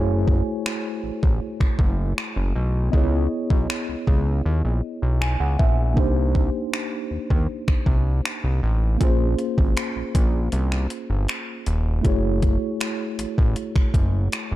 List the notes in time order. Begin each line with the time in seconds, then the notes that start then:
Already playing: F#1 A3 E4 F#4 G#4 C5 C#5 G#5
0.28 kick
0.66 finger snap
1.04 A1
1.23 A1, kick
1.60 F#1, finger snap, kick
1.79 F#1, kick
2.18 finger snap
2.36 F#1
2.56 B1
2.90 C#2 B3 E4 D#5, kick
2.95 G#4 C#5
3.50 B1, kick
3.70 finger snap
3.89 C#2
4.07 C#2, kick
4.46 D#2
4.65 A#1
5.02 B1
5.21 G#5, finger snap
5.40 C#2 F#5
5.59 A#1 E5, kick
5.94 C2 A#3 D4 D#4, kick
5.99 G4 C5
6.35 kick
6.74 finger snap
7.11 D#2
7.30 D#2, kick
7.68 C2, finger snap, kick
7.86 C2, kick
8.25 finger snap
8.44 C2
8.63 A1
8.98 A#1 A#3 C#4 F4, kick, closed hi-hat
9.02 G#4 C5
9.39 closed hi-hat
9.58 G#1, kick
9.77 finger snap, closed hi-hat
9.96 A#1
10.15 A#1, kick, closed hi-hat
10.52 C2, closed hi-hat
10.72 finger snap
10.90 closed hi-hat
11.10 G1
11.28 finger snap, closed hi-hat
11.66 D#1, closed hi-hat
12.02 F#1 A3 E4 F#4, kick, closed hi-hat
12.06 G#4 C#5
12.42 kick, closed hi-hat
12.81 finger snap, closed hi-hat
13.19 A1, closed hi-hat
13.38 A1, kick
13.56 closed hi-hat
13.76 F#1, finger snap, kick
13.94 F#1, kick, closed hi-hat
14.32 finger snap, closed hi-hat
14.51 F#1